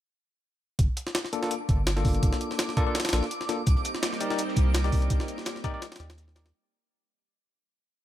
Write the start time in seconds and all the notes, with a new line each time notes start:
0.79 G1 D6, kick, closed hi-hat
0.97 closed hi-hat
1.07 snare
1.15 snare, closed hi-hat
1.25 snare
1.33 A#3 D4 F4 A4, closed hi-hat
1.43 A#3 D4 F4 A4, snare
1.51 closed hi-hat
1.69 G1, kick, closed hi-hat
1.87 snare, closed hi-hat
1.96 A#3 D4 F4 A4, snare
2.05 G1, kick, open hi-hat
2.15 closed hi-hat
2.23 G1, kick, closed hi-hat
2.33 snare
2.41 closed hi-hat
2.51 snare
2.59 snare, closed hi-hat
2.69 snare
2.77 A#3 D4 F4 A4, kick, closed hi-hat
2.87 A#3 D4 F4 A4
2.95 snare, closed hi-hat
3.00 snare, closed hi-hat
3.05 snare, closed hi-hat
3.09 A#1, snare, closed hi-hat
3.13 A#3 D4 F4 A4, snare, closed hi-hat
3.23 snare
3.31 closed hi-hat
3.41 snare
3.49 A#3 D4 F4 A4, snare, closed hi-hat
3.67 C2 G3 A#3 C4 D#4, kick, closed hi-hat, shaker
3.77 closed hi-hat
3.85 closed hi-hat, shaker
3.95 snare
4.03 snare, closed hi-hat, shaker
4.13 snare
4.20 D#4 G4 A#4 D5, closed hi-hat, shaker
4.30 D#4 G4 A#4 D5, snare
4.38 closed hi-hat, shaker
4.48 snare
4.56 C2, kick, closed hi-hat, shaker
4.74 snare, closed hi-hat, shaker
4.84 D#4 G4 A#4 D5, snare
4.92 C2, kick, open hi-hat, shaker
5.02 closed hi-hat
5.10 C2, kick, closed hi-hat, shaker
5.20 snare
5.28 closed hi-hat, shaker
5.38 snare
5.46 snare, closed hi-hat, shaker
5.56 snare
5.64 D#4 G4 A#4 D5, kick, closed hi-hat, shaker
5.74 D#4 G4 A#4 D5
5.82 snare, closed hi-hat, shaker
5.92 snare, closed hi-hat
5.96 D#2 G4 D5, snare, closed hi-hat, shaker
6.00 D#4 A#4, snare, closed hi-hat
6.10 snare
6.18 snare, closed hi-hat, shaker
6.28 snare
6.35 D#4 G4 A#4 D5, snare, closed hi-hat, shaker
6.46 snare, closed hi-hat